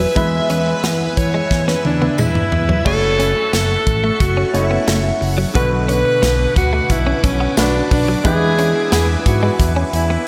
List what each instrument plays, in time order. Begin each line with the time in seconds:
Already playing: grand piano G#3 B3 E4 B4, alto saxophone B4, string machine B4 E5 G#5 E6
0.00 clean electric guitar F#3
0.15 analog synth bass E2, grand piano E3 G#3 B3 E4 B4, clean electric guitar G#3, alto saxophone E5, kick, closed hi-hat
0.50 analog synth bass E2, clean electric guitar C#4, alto saxophone B4, closed hi-hat
0.67 muted clean electric guitar stroke
0.83 analog synth bass E2, clean electric guitar B3, snare, closed hi-hat, tambourine
1.17 analog synth bass E2, alto saxophone C#5, muted clean electric guitar stroke, kick, closed hi-hat
1.34 clean electric guitar G#3
1.51 analog synth bass E2, kick, snare
1.67 clean electric guitar C#4, alto saxophone B4, snare
1.84 analog synth bass E2, alto saxophone D4, muted clean electric guitar stroke, high tom
2.02 clean electric guitar B3, high tom
2.18 analog synth bass E2, clean electric guitar G#3, alto saxophone E4, mid tom, tambourine
2.35 mid tom
2.52 analog synth bass E2, muted clean electric guitar stroke, floor tom
2.69 clean electric guitar F#3, floor tom
2.85 analog synth bass F#1, grand piano A3 C#4 E4 F#4 C#5, clean electric guitar A3, string machine A4 E5 F#5 C#6, alto saxophone A4, kick, crash
3.19 clean electric guitar C#4, closed hi-hat
3.36 muted clean electric guitar stroke
3.53 analog synth bass F#1, clean electric guitar B3, alto saxophone A4, snare, closed hi-hat, tambourine
3.87 analog synth bass A1, muted clean electric guitar stroke, kick, closed hi-hat
4.04 clean electric guitar A3
4.20 analog synth bass F#1, alto saxophone F#4, kick, closed hi-hat
4.37 clean electric guitar C#4
4.53 analog synth bass F#1, grand piano A3 C#4 E4 F#4 C#5, alto saxophone E4, muted clean electric guitar stroke, closed hi-hat
4.71 clean electric guitar B3
4.88 analog synth bass F#1, clean electric guitar A3, snare, closed hi-hat, tambourine
5.21 analog synth bass F#1, muted clean electric guitar stroke, open hi-hat
5.38 clean electric guitar F#3
5.54 analog synth bass B1, grand piano B2 D3 F#4 B4, clean electric guitar F#3, string machine B4 D6, alto saxophone B4, kick, closed hi-hat
5.88 clean electric guitar C#4, alto saxophone B4, closed hi-hat
6.05 muted clean electric guitar stroke
6.22 analog synth bass B1, clean electric guitar B3, snare, closed hi-hat, tambourine
6.56 analog synth bass D2, alto saxophone F#4, muted clean electric guitar stroke, kick, closed hi-hat
6.73 clean electric guitar A3
6.90 analog synth bass B1, alto saxophone E4, kick, closed hi-hat
7.07 clean electric guitar C#4
7.23 analog synth bass B1, alto saxophone C#4, muted clean electric guitar stroke, kick, closed hi-hat
7.40 clean electric guitar B3
7.57 analog synth bass B1, clean electric guitar A3, grand piano D4 F#4 B4, alto saxophone D4, snare, closed hi-hat, tambourine
7.91 analog synth bass B1, alto saxophone D4, muted clean electric guitar stroke, kick, open hi-hat
8.08 clean electric guitar F#3
8.24 analog synth bass E2, grand piano E3 G#3 B3 D4 E4 B4, clean electric guitar G#3, alto saxophone G#4, string machine E5 G#5, kick, closed hi-hat
8.59 clean electric guitar C#4, closed hi-hat
8.76 muted clean electric guitar stroke
8.92 analog synth bass E2, clean electric guitar B3, alto saxophone G#4, snare, closed hi-hat, tambourine
9.26 analog synth bass G#2, alto saxophone F#4, muted clean electric guitar stroke, kick, closed hi-hat
9.43 clean electric guitar G#3
9.60 analog synth bass E2, kick, closed hi-hat
9.76 clean electric guitar C#4
9.93 analog synth bass E2, alto saxophone E4, muted clean electric guitar stroke, closed hi-hat
10.10 clean electric guitar B3